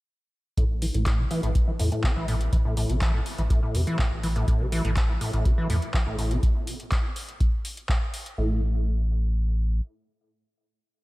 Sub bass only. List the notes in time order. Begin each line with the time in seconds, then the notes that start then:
0.58 A1
0.94 A1
1.43 A1
1.80 E2
2.16 A1
2.53 A1
2.89 A1
3.38 A1
3.75 E2
4.12 A1
4.48 A1
4.85 A1
5.33 A1
5.70 E2
6.07 A1
8.38 A1